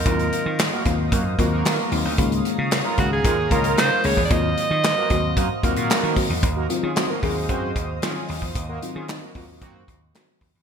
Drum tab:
HH |xxx-x-x-x-x-x-o-|xxx-x-x-x-xxx-o-|x-x-x-x-x-xxx-o-|x-x-x-o-x-x-x-o-|
CP |----x-------x---|----x-------x---|----x-------x---|----x-------x---|
SD |----o-------o---|----o-------o---|----o-------o---|----o-------o---|
BD |o-----o-o-o-----|o-----o-o-o----o|o-----o-o-o---o-|o-----o-o-o----o|

HH |x-x-x-o-x-x-x-o-|
CP |----x-------x---|
SD |----o-------o---|
BD |o-----o-o-o---o-|